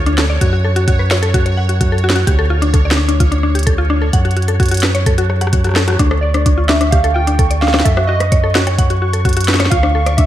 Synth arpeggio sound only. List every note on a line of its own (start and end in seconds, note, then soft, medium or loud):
0.06 0.11 D4 loud
0.18 0.26 A4 medium
0.30 0.38 D5 medium
0.41 0.46 F#4 medium
0.53 0.64 F#4 medium
0.64 0.76 A4 medium
0.76 0.84 F#4 loud
0.88 0.93 F#4 loud
0.99 1.08 B4 medium
1.11 1.19 C#5 loud
1.23 1.31 A4 loud
1.34 1.39 F#4 loud
1.46 1.54 C#5 medium
1.57 1.66 F#5 medium
1.69 1.74 F#4 medium
1.81 1.92 F#4 medium
1.92 2.03 A4 medium
2.04 2.12 F#4 loud
2.15 2.21 F#4 loud
2.27 2.35 G4 medium
2.39 2.47 A4 loud
2.50 2.59 F4 loud
2.62 2.67 D4 loud
2.74 2.82 A4 medium
2.85 2.94 D5 medium
2.97 3.02 D4 medium
3.08 3.20 D4 medium
3.20 3.31 F4 medium
3.32 3.40 D4 loud
3.43 3.48 D4 loud
3.55 3.63 G4 medium
3.67 3.75 A4 loud
3.78 3.87 F4 loud
3.90 3.95 D4 loud
4.02 4.10 A4 medium
4.13 4.22 F#5 medium
4.25 4.30 F#4 medium
4.37 4.48 F#4 medium
4.48 4.59 A4 medium
4.60 4.68 F#4 loud
4.71 4.76 F#4 loud
4.83 4.91 B4 medium
4.95 5.03 C#5 loud
5.06 5.15 A4 loud
5.18 5.23 F#4 loud
5.30 5.38 C#5 medium
5.41 5.50 F#5 medium
5.53 5.58 F#4 medium
5.65 5.76 F#4 medium
5.76 5.87 A4 medium
5.88 5.96 F#4 loud
5.99 6.04 D4 loud
6.11 6.19 A4 medium
6.23 6.31 D5 medium
6.34 6.39 D4 medium
6.46 6.57 D4 medium
6.58 6.69 F4 medium
6.69 6.77 D4 loud
6.81 6.86 D4 loud
6.92 7.01 G4 medium
7.04 7.12 A4 loud
7.16 7.24 F4 medium
7.27 7.32 D4 loud
7.39 7.47 A4 medium
7.51 7.59 D5 medium
7.62 7.67 D4 medium
7.74 7.85 D4 medium
7.85 7.97 A4 medium
7.97 8.05 F#4 loud
8.09 8.14 F#4 loud
8.20 8.29 B4 medium
8.32 8.40 C#5 loud
8.44 8.52 A4 loud
8.55 8.60 F#4 loud
8.67 8.75 C#5 medium
8.79 8.87 F#5 medium
8.90 8.95 F#4 medium
9.02 9.13 F#4 medium
9.13 9.24 A4 medium
9.25 9.33 F#4 loud
9.37 9.42 F#4 loud
9.48 9.57 B4 medium
9.60 9.68 C#5 loud
9.72 9.80 F4 loud
9.83 9.88 D4 loud
9.95 10.03 A4 medium
10.06 10.15 D5 medium
10.18 10.23 D4 medium